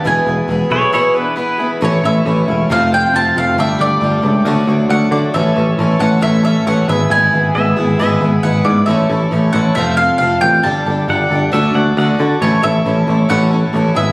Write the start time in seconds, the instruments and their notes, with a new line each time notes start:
Already playing: tonewheel organ B4 B5
0.04 picked electric bass E1, steel-string acoustic guitar E2 B2 E3 B3 E4 G#4, tonewheel organ G#4 E5, mandolin G#5
0.26 picked electric bass E1, steel-string acoustic guitar E3 B3 E4 G#4
0.48 picked electric bass E1, steel-string acoustic guitar E3 B3 E4 G#4
0.70 picked electric bass B1, steel-string acoustic guitar E3 B3 E4 G#4, pedal steel guitar E4 C#5
0.93 steel-string acoustic guitar E2 B2 E3 B3 E4 G#4, pedal steel guitar E4 C#5
1.14 steel-string acoustic guitar E3 B3 E4 G#4, pedal steel guitar D4 B4
1.36 steel-string acoustic guitar E3 B3 E4 G#4, pedal steel guitar B4
1.58 clean electric guitar B2, steel-string acoustic guitar E3 B3 E4 G#4
1.62 clean electric guitar E2
1.81 picked electric bass A1, steel-string acoustic guitar A2 E3 A3 C#4 E4, tonewheel organ A4 C#5 E5 C#6, mandolin C#5
2.03 picked electric bass A1, steel-string acoustic guitar A3 C#4 E4, mandolin E5
2.25 picked electric bass A1, steel-string acoustic guitar E3 A3 C#4 E4
2.48 picked electric bass E1, steel-string acoustic guitar A3 C#4 E4
2.69 picked electric bass F1, steel-string acoustic guitar F2 C3 F3 A3 C4 F4, tonewheel organ A4 C5 F5 C6, mandolin F5
2.91 steel-string acoustic guitar F3 A3 C4 F4, mandolin G5
3.14 picked electric bass F1, steel-string acoustic guitar F3 A3 C4 F4, mandolin A5
3.36 picked electric bass F1, steel-string acoustic guitar F3 A3 C4 F4, mandolin F5
3.58 picked electric bass G1, steel-string acoustic guitar G3 A3 D4 G4, tonewheel organ D5 G5 D6, mandolin E5
3.79 picked electric bass G1, steel-string acoustic guitar A3 D4 G4, mandolin D5
4.01 picked electric bass G1, steel-string acoustic guitar G3 A3 D4 G4
4.22 picked electric bass C#2, steel-string acoustic guitar A3 D4 G4
4.45 picked electric bass D2, steel-string acoustic guitar D3 A3 D4 F#4, clean electric guitar F#3, tonewheel organ F#5
4.67 picked electric bass D2, steel-string acoustic guitar A3 D4 F#4
4.90 picked electric bass D2, steel-string acoustic guitar D3 A3 D4 F#4, clean electric guitar F#3, mandolin F#5
5.11 picked electric bass D3, steel-string acoustic guitar A3 D4 F#4, mandolin D5
5.33 picked electric bass A1, steel-string acoustic guitar A2 E3 A3 C#4 A4, tonewheel organ C#5 E5 C#6, mandolin E5
5.56 picked electric bass A1, steel-string acoustic guitar A3 C#4 A4
5.78 picked electric bass A1, steel-string acoustic guitar E3 A3 C#4 A4
5.99 picked electric bass A1, steel-string acoustic guitar C#4 A4, mandolin F#5
6.03 steel-string acoustic guitar A3
6.21 picked electric bass A1, steel-string acoustic guitar A2 E3 A3 C#4 A4, mandolin E5
6.43 steel-string acoustic guitar A3 C#4 A4, mandolin E5
6.66 picked electric bass A1, steel-string acoustic guitar E3 A3 C#4 A4, mandolin F#5
6.88 picked electric bass G#1, clean electric guitar G#3, steel-string acoustic guitar B3 E4 G#4, tonewheel organ G#4 B4 E5 B5, mandolin E5
7.10 picked electric bass G#1, steel-string acoustic guitar G#3 B3 E4 G#4, mandolin G#5
7.33 picked electric bass G#1, steel-string acoustic guitar B3 E4 G#4
7.55 picked electric bass G#1, steel-string acoustic guitar G#3 B3 E4 G#4, pedal steel guitar E5
7.76 picked electric bass G#1, steel-string acoustic guitar B3 E4 G#4
7.99 picked electric bass G#1, steel-string acoustic guitar G#3 B3 E4 G#4, pedal steel guitar E5
8.21 picked electric bass G#1, steel-string acoustic guitar E4 G#4
8.25 steel-string acoustic guitar B3
8.43 picked electric bass G#1, steel-string acoustic guitar G#3 B3 E4 G#4, mandolin F#5
8.65 picked electric bass G#2, steel-string acoustic guitar E4 G#4, mandolin D5
8.69 steel-string acoustic guitar B3
8.86 picked electric bass A1, steel-string acoustic guitar A2 A3 C#4, tonewheel organ A4 C#5 C#6, mandolin E5
8.90 steel-string acoustic guitar E4 A4
9.09 picked electric bass A1, steel-string acoustic guitar C#4 E4 A4
9.31 picked electric bass A1, steel-string acoustic guitar A3 C#4 E4 A4
9.53 picked electric bass A1, steel-string acoustic guitar E4 A4, mandolin F#5
9.58 steel-string acoustic guitar C#4
9.75 picked electric bass F1, steel-string acoustic guitar F3 A3 C4 F4 A4, tonewheel organ C5 F5 C6, mandolin E5
9.97 steel-string acoustic guitar F4 A4, mandolin F5
10.02 steel-string acoustic guitar C4
10.18 picked electric bass F1, steel-string acoustic guitar A3 C4, mandolin F5
10.22 steel-string acoustic guitar F4 A4
10.41 picked electric bass A1, steel-string acoustic guitar F4 A4, mandolin G5
10.46 steel-string acoustic guitar C4
10.63 picked electric bass G1, steel-string acoustic guitar G3 D4 G4 A4, tonewheel organ G4 A4 D5 D6, mandolin A5
10.86 picked electric bass G1, steel-string acoustic guitar D4 G4 A4
11.08 picked electric bass G1, steel-string acoustic guitar G3 D4 G4 A4, pedal steel guitar F#5
11.30 picked electric bass G1, steel-string acoustic guitar D4 G4 A4
11.52 picked electric bass D2, steel-string acoustic guitar D3 D4 F#4 A4, tonewheel organ D5 F#5, pedal steel guitar E5
11.74 picked electric bass D2, steel-string acoustic guitar D4 F#4 A4, pedal steel guitar F#5
11.97 picked electric bass D2, steel-string acoustic guitar D3 D4 F#4 A4, pedal steel guitar F#5
12.19 picked electric bass D3, steel-string acoustic guitar D4 F#4 A4
12.40 picked electric bass A1, steel-string acoustic guitar A2 A3 C#4 E4, tonewheel organ C#5 E5 C#6, mandolin C#5
12.44 steel-string acoustic guitar A4
12.62 picked electric bass A1, steel-string acoustic guitar C#4 E4 A4, mandolin E5
12.85 picked electric bass A1, steel-string acoustic guitar A3 C#4 E4 A4
13.07 picked electric bass A1, steel-string acoustic guitar C#4 E4 A4
13.29 picked electric bass A1, steel-string acoustic guitar A2 A3 C#4 E4 A4, mandolin F#5
13.51 steel-string acoustic guitar C#4 E4 A4
13.73 picked electric bass A1, steel-string acoustic guitar A3 C#4 E4 A4
13.95 picked electric bass G#1, clean electric guitar G#2 E3 G#3, steel-string acoustic guitar B3 E4 G#4, tonewheel organ G#4 B4 B5, mandolin E5